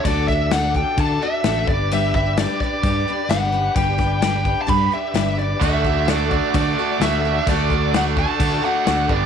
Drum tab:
CC |x-x-x-x-|x-x-x-x-|x-x-x-x-|x-x-x-x-|
SD |-oo---o-|--o---o-|-oo---o-|--o---o-|
BD |oo-oo--o|-o-oo---|oo-oo---|oo-oo---|

CC |x-x-x-x-|
SD |--o---o-|
BD |oo-oo--o|